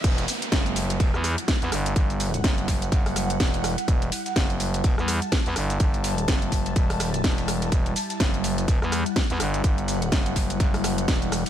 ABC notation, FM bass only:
X:1
M:4/4
L:1/16
Q:"Swing 16ths" 1/4=125
K:Em
V:1 name="FM bass" clef=bass
E,,,2 z2 F,,,4 E,,, E,,2 z2 E,, G,,,2 | G,,,4 F,,,4 F,,,4 E,,,3 z | E,,,2 z2 F,,,4 E,,, E,,2 z2 E,, G,,,2 | G,,,4 F,,,4 E,,,4 E,,,4 |
E,,,2 z2 F,,,4 E,,, E,,2 z2 E,, G,,,2 | G,,,4 F,,,4 F,,,4 E,,,3 z |]